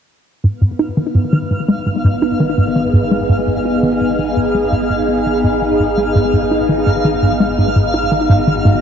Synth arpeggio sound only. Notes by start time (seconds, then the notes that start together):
0.44 G#2
0.61 G#2
0.79 D#4
0.97 D#3
1.15 G#2
1.33 D#3
1.51 G#2
1.69 G#3
1.86 G#2
2.05 G#2
2.22 D#4
2.40 D#3
2.58 G#2
2.76 D#3
2.94 G#2
3.11 G#3
3.29 G#2
3.47 G#2
3.65 D#4
3.83 D#3
4.01 G#2
4.19 D#3
4.37 G#2
4.55 G#3
4.72 G#2
4.90 G#2
5.08 D#4
5.26 D#3
5.44 G#2
5.62 D#3
5.80 G#2
5.97 G#3
6.15 G#2
6.33 G#2
6.51 D#4
6.69 D#3
6.87 G#2
7.05 D#3
7.23 G#2
7.40 G#3
7.58 G#2
7.76 G#2
7.94 D#4
8.12 D#3
8.30 G#2
8.47 D#3
8.65 G#2